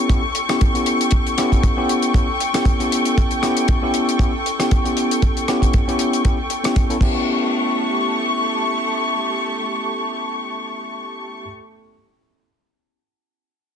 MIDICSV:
0, 0, Header, 1, 4, 480
1, 0, Start_track
1, 0, Tempo, 512821
1, 1049, Time_signature, 4, 2, 24, 8
1, 12871, End_track
2, 0, Start_track
2, 0, Title_t, "String section"
2, 0, Program_c, 0, 48
2, 0, Note_on_c, 0, 69, 76
2, 0, Note_on_c, 0, 79, 72
2, 0, Note_on_c, 0, 85, 87
2, 6531, Note_off_c, 0, 69, 0
2, 6531, Note_off_c, 0, 79, 0
2, 6536, Note_off_c, 0, 85, 0
2, 6571, Note_on_c, 0, 85, 82
2, 6572, Note_on_c, 0, 67, 65
2, 6574, Note_on_c, 0, 57, 72
2, 10717, Note_off_c, 0, 85, 0
2, 10719, Note_off_c, 0, 67, 0
2, 10720, Note_off_c, 0, 57, 0
2, 12871, End_track
3, 0, Start_track
3, 0, Title_t, "Tine electric piano"
3, 0, Program_c, 1, 4
3, 81, Note_on_c, 1, 59, 72
3, 84, Note_on_c, 1, 61, 65
3, 87, Note_on_c, 1, 64, 67
3, 91, Note_on_c, 1, 67, 79
3, 196, Note_off_c, 1, 59, 0
3, 198, Note_off_c, 1, 61, 0
3, 199, Note_off_c, 1, 64, 0
3, 201, Note_off_c, 1, 67, 0
3, 457, Note_on_c, 1, 59, 76
3, 459, Note_on_c, 1, 61, 71
3, 460, Note_on_c, 1, 64, 73
3, 464, Note_on_c, 1, 67, 84
3, 667, Note_off_c, 1, 59, 0
3, 668, Note_off_c, 1, 61, 0
3, 668, Note_off_c, 1, 64, 0
3, 670, Note_off_c, 1, 67, 0
3, 692, Note_on_c, 1, 59, 73
3, 699, Note_on_c, 1, 61, 67
3, 706, Note_on_c, 1, 64, 68
3, 714, Note_on_c, 1, 67, 79
3, 1259, Note_off_c, 1, 59, 0
3, 1262, Note_off_c, 1, 61, 0
3, 1266, Note_off_c, 1, 64, 0
3, 1270, Note_off_c, 1, 67, 0
3, 1289, Note_on_c, 1, 59, 90
3, 1292, Note_on_c, 1, 61, 80
3, 1295, Note_on_c, 1, 64, 81
3, 1299, Note_on_c, 1, 67, 96
3, 1628, Note_off_c, 1, 59, 0
3, 1629, Note_off_c, 1, 61, 0
3, 1631, Note_off_c, 1, 64, 0
3, 1633, Note_off_c, 1, 67, 0
3, 1656, Note_on_c, 1, 59, 84
3, 1659, Note_on_c, 1, 61, 74
3, 1665, Note_on_c, 1, 64, 76
3, 1665, Note_on_c, 1, 67, 91
3, 1981, Note_off_c, 1, 59, 0
3, 1982, Note_off_c, 1, 61, 0
3, 1986, Note_off_c, 1, 64, 0
3, 1986, Note_off_c, 1, 67, 0
3, 2006, Note_on_c, 1, 59, 70
3, 2008, Note_on_c, 1, 61, 66
3, 2013, Note_on_c, 1, 64, 64
3, 2017, Note_on_c, 1, 67, 79
3, 2119, Note_off_c, 1, 59, 0
3, 2120, Note_off_c, 1, 61, 0
3, 2122, Note_off_c, 1, 64, 0
3, 2124, Note_off_c, 1, 67, 0
3, 2376, Note_on_c, 1, 59, 79
3, 2380, Note_on_c, 1, 61, 73
3, 2381, Note_on_c, 1, 64, 70
3, 2385, Note_on_c, 1, 67, 86
3, 2586, Note_off_c, 1, 59, 0
3, 2589, Note_off_c, 1, 61, 0
3, 2589, Note_off_c, 1, 64, 0
3, 2591, Note_off_c, 1, 67, 0
3, 2609, Note_on_c, 1, 59, 71
3, 2617, Note_on_c, 1, 61, 65
3, 2623, Note_on_c, 1, 64, 64
3, 2629, Note_on_c, 1, 67, 80
3, 3178, Note_off_c, 1, 59, 0
3, 3182, Note_off_c, 1, 61, 0
3, 3185, Note_off_c, 1, 64, 0
3, 3188, Note_off_c, 1, 67, 0
3, 3204, Note_on_c, 1, 59, 87
3, 3208, Note_on_c, 1, 61, 81
3, 3213, Note_on_c, 1, 64, 79
3, 3216, Note_on_c, 1, 67, 97
3, 3546, Note_off_c, 1, 59, 0
3, 3547, Note_off_c, 1, 61, 0
3, 3550, Note_off_c, 1, 64, 0
3, 3551, Note_off_c, 1, 67, 0
3, 3577, Note_on_c, 1, 59, 83
3, 3582, Note_on_c, 1, 61, 75
3, 3585, Note_on_c, 1, 64, 78
3, 3587, Note_on_c, 1, 67, 91
3, 3902, Note_off_c, 1, 59, 0
3, 3904, Note_off_c, 1, 61, 0
3, 3906, Note_off_c, 1, 64, 0
3, 3907, Note_off_c, 1, 67, 0
3, 3924, Note_on_c, 1, 59, 73
3, 3928, Note_on_c, 1, 61, 64
3, 3931, Note_on_c, 1, 64, 67
3, 3932, Note_on_c, 1, 67, 80
3, 4038, Note_off_c, 1, 59, 0
3, 4040, Note_off_c, 1, 61, 0
3, 4041, Note_off_c, 1, 64, 0
3, 4042, Note_off_c, 1, 67, 0
3, 4299, Note_on_c, 1, 59, 77
3, 4301, Note_on_c, 1, 61, 72
3, 4306, Note_on_c, 1, 64, 70
3, 4306, Note_on_c, 1, 67, 85
3, 4508, Note_off_c, 1, 59, 0
3, 4509, Note_off_c, 1, 61, 0
3, 4511, Note_off_c, 1, 64, 0
3, 4512, Note_off_c, 1, 67, 0
3, 4531, Note_on_c, 1, 59, 71
3, 4539, Note_on_c, 1, 61, 66
3, 4545, Note_on_c, 1, 64, 63
3, 4550, Note_on_c, 1, 67, 80
3, 5098, Note_off_c, 1, 59, 0
3, 5102, Note_off_c, 1, 61, 0
3, 5105, Note_off_c, 1, 64, 0
3, 5108, Note_off_c, 1, 67, 0
3, 5133, Note_on_c, 1, 59, 88
3, 5133, Note_on_c, 1, 61, 77
3, 5136, Note_on_c, 1, 64, 78
3, 5138, Note_on_c, 1, 67, 94
3, 5470, Note_off_c, 1, 59, 0
3, 5470, Note_off_c, 1, 61, 0
3, 5472, Note_off_c, 1, 64, 0
3, 5473, Note_off_c, 1, 67, 0
3, 5500, Note_on_c, 1, 59, 81
3, 5503, Note_on_c, 1, 61, 75
3, 5508, Note_on_c, 1, 64, 74
3, 5511, Note_on_c, 1, 67, 89
3, 5823, Note_off_c, 1, 59, 0
3, 5824, Note_off_c, 1, 61, 0
3, 5827, Note_off_c, 1, 64, 0
3, 5828, Note_off_c, 1, 67, 0
3, 5849, Note_on_c, 1, 59, 69
3, 5851, Note_on_c, 1, 61, 64
3, 5854, Note_on_c, 1, 64, 64
3, 5859, Note_on_c, 1, 67, 77
3, 5960, Note_off_c, 1, 59, 0
3, 5961, Note_off_c, 1, 61, 0
3, 5963, Note_off_c, 1, 64, 0
3, 5965, Note_off_c, 1, 67, 0
3, 6212, Note_on_c, 1, 59, 73
3, 6216, Note_on_c, 1, 61, 67
3, 6220, Note_on_c, 1, 64, 69
3, 6223, Note_on_c, 1, 67, 82
3, 6424, Note_off_c, 1, 59, 0
3, 6426, Note_off_c, 1, 61, 0
3, 6429, Note_off_c, 1, 64, 0
3, 6430, Note_off_c, 1, 67, 0
3, 6454, Note_on_c, 1, 59, 81
3, 6457, Note_on_c, 1, 61, 75
3, 6460, Note_on_c, 1, 64, 75
3, 6462, Note_on_c, 1, 69, 89
3, 6515, Note_off_c, 1, 59, 0
3, 6517, Note_off_c, 1, 61, 0
3, 6518, Note_off_c, 1, 64, 0
3, 6519, Note_off_c, 1, 69, 0
3, 6554, Note_on_c, 1, 59, 76
3, 6565, Note_on_c, 1, 61, 69
3, 6573, Note_on_c, 1, 64, 70
3, 6583, Note_on_c, 1, 67, 86
3, 10701, Note_off_c, 1, 59, 0
3, 10711, Note_off_c, 1, 61, 0
3, 10720, Note_off_c, 1, 64, 0
3, 10729, Note_off_c, 1, 67, 0
3, 12871, End_track
4, 0, Start_track
4, 0, Title_t, "Drums"
4, 89, Note_on_c, 9, 36, 114
4, 94, Note_on_c, 9, 42, 84
4, 183, Note_off_c, 9, 36, 0
4, 187, Note_off_c, 9, 42, 0
4, 326, Note_on_c, 9, 42, 82
4, 420, Note_off_c, 9, 42, 0
4, 460, Note_on_c, 9, 42, 60
4, 464, Note_on_c, 9, 37, 72
4, 554, Note_off_c, 9, 42, 0
4, 557, Note_off_c, 9, 37, 0
4, 572, Note_on_c, 9, 42, 77
4, 575, Note_on_c, 9, 36, 107
4, 665, Note_off_c, 9, 42, 0
4, 669, Note_off_c, 9, 36, 0
4, 703, Note_on_c, 9, 42, 48
4, 796, Note_off_c, 9, 42, 0
4, 806, Note_on_c, 9, 42, 80
4, 900, Note_off_c, 9, 42, 0
4, 944, Note_on_c, 9, 42, 58
4, 1036, Note_off_c, 9, 42, 0
4, 1036, Note_on_c, 9, 42, 85
4, 1049, Note_on_c, 9, 36, 112
4, 1130, Note_off_c, 9, 42, 0
4, 1143, Note_off_c, 9, 36, 0
4, 1185, Note_on_c, 9, 42, 48
4, 1278, Note_off_c, 9, 42, 0
4, 1290, Note_on_c, 9, 42, 84
4, 1295, Note_on_c, 9, 37, 63
4, 1383, Note_off_c, 9, 42, 0
4, 1389, Note_off_c, 9, 37, 0
4, 1424, Note_on_c, 9, 36, 51
4, 1428, Note_on_c, 9, 42, 60
4, 1518, Note_off_c, 9, 36, 0
4, 1522, Note_off_c, 9, 42, 0
4, 1530, Note_on_c, 9, 36, 107
4, 1530, Note_on_c, 9, 42, 79
4, 1624, Note_off_c, 9, 36, 0
4, 1624, Note_off_c, 9, 42, 0
4, 1773, Note_on_c, 9, 42, 78
4, 1866, Note_off_c, 9, 42, 0
4, 1895, Note_on_c, 9, 42, 56
4, 1989, Note_off_c, 9, 42, 0
4, 2007, Note_on_c, 9, 36, 108
4, 2018, Note_on_c, 9, 42, 84
4, 2100, Note_off_c, 9, 36, 0
4, 2112, Note_off_c, 9, 42, 0
4, 2251, Note_on_c, 9, 42, 76
4, 2344, Note_off_c, 9, 42, 0
4, 2379, Note_on_c, 9, 42, 64
4, 2382, Note_on_c, 9, 37, 76
4, 2473, Note_off_c, 9, 42, 0
4, 2476, Note_off_c, 9, 37, 0
4, 2484, Note_on_c, 9, 36, 109
4, 2491, Note_on_c, 9, 42, 86
4, 2578, Note_off_c, 9, 36, 0
4, 2585, Note_off_c, 9, 42, 0
4, 2623, Note_on_c, 9, 42, 45
4, 2716, Note_off_c, 9, 42, 0
4, 2735, Note_on_c, 9, 42, 85
4, 2829, Note_off_c, 9, 42, 0
4, 2858, Note_on_c, 9, 42, 57
4, 2952, Note_off_c, 9, 42, 0
4, 2973, Note_on_c, 9, 36, 107
4, 2974, Note_on_c, 9, 42, 85
4, 3067, Note_off_c, 9, 36, 0
4, 3067, Note_off_c, 9, 42, 0
4, 3096, Note_on_c, 9, 42, 49
4, 3190, Note_off_c, 9, 42, 0
4, 3209, Note_on_c, 9, 37, 65
4, 3213, Note_on_c, 9, 42, 85
4, 3302, Note_off_c, 9, 37, 0
4, 3307, Note_off_c, 9, 42, 0
4, 3338, Note_on_c, 9, 42, 63
4, 3432, Note_off_c, 9, 42, 0
4, 3445, Note_on_c, 9, 42, 77
4, 3450, Note_on_c, 9, 36, 113
4, 3538, Note_off_c, 9, 42, 0
4, 3544, Note_off_c, 9, 36, 0
4, 3686, Note_on_c, 9, 42, 73
4, 3779, Note_off_c, 9, 42, 0
4, 3826, Note_on_c, 9, 42, 61
4, 3919, Note_off_c, 9, 42, 0
4, 3925, Note_on_c, 9, 36, 103
4, 3936, Note_on_c, 9, 42, 80
4, 4018, Note_off_c, 9, 36, 0
4, 4030, Note_off_c, 9, 42, 0
4, 4175, Note_on_c, 9, 42, 81
4, 4269, Note_off_c, 9, 42, 0
4, 4303, Note_on_c, 9, 37, 76
4, 4307, Note_on_c, 9, 42, 63
4, 4397, Note_off_c, 9, 37, 0
4, 4401, Note_off_c, 9, 42, 0
4, 4412, Note_on_c, 9, 42, 84
4, 4414, Note_on_c, 9, 36, 104
4, 4506, Note_off_c, 9, 42, 0
4, 4508, Note_off_c, 9, 36, 0
4, 4544, Note_on_c, 9, 42, 51
4, 4638, Note_off_c, 9, 42, 0
4, 4650, Note_on_c, 9, 42, 74
4, 4743, Note_off_c, 9, 42, 0
4, 4787, Note_on_c, 9, 42, 59
4, 4880, Note_off_c, 9, 42, 0
4, 4889, Note_on_c, 9, 42, 75
4, 4890, Note_on_c, 9, 36, 107
4, 4983, Note_off_c, 9, 42, 0
4, 4984, Note_off_c, 9, 36, 0
4, 5024, Note_on_c, 9, 42, 48
4, 5118, Note_off_c, 9, 42, 0
4, 5131, Note_on_c, 9, 42, 76
4, 5132, Note_on_c, 9, 37, 59
4, 5224, Note_off_c, 9, 42, 0
4, 5226, Note_off_c, 9, 37, 0
4, 5261, Note_on_c, 9, 36, 49
4, 5268, Note_on_c, 9, 42, 65
4, 5355, Note_off_c, 9, 36, 0
4, 5361, Note_off_c, 9, 42, 0
4, 5368, Note_on_c, 9, 42, 76
4, 5373, Note_on_c, 9, 36, 110
4, 5461, Note_off_c, 9, 42, 0
4, 5467, Note_off_c, 9, 36, 0
4, 5510, Note_on_c, 9, 42, 50
4, 5604, Note_off_c, 9, 42, 0
4, 5606, Note_on_c, 9, 42, 84
4, 5700, Note_off_c, 9, 42, 0
4, 5741, Note_on_c, 9, 42, 56
4, 5835, Note_off_c, 9, 42, 0
4, 5847, Note_on_c, 9, 42, 81
4, 5850, Note_on_c, 9, 36, 97
4, 5941, Note_off_c, 9, 42, 0
4, 5943, Note_off_c, 9, 36, 0
4, 6084, Note_on_c, 9, 42, 79
4, 6177, Note_off_c, 9, 42, 0
4, 6218, Note_on_c, 9, 42, 55
4, 6226, Note_on_c, 9, 37, 71
4, 6312, Note_off_c, 9, 42, 0
4, 6320, Note_off_c, 9, 37, 0
4, 6328, Note_on_c, 9, 42, 81
4, 6330, Note_on_c, 9, 36, 109
4, 6422, Note_off_c, 9, 42, 0
4, 6423, Note_off_c, 9, 36, 0
4, 6460, Note_on_c, 9, 42, 48
4, 6554, Note_off_c, 9, 42, 0
4, 6559, Note_on_c, 9, 36, 98
4, 6570, Note_on_c, 9, 49, 75
4, 6653, Note_off_c, 9, 36, 0
4, 6663, Note_off_c, 9, 49, 0
4, 12871, End_track
0, 0, End_of_file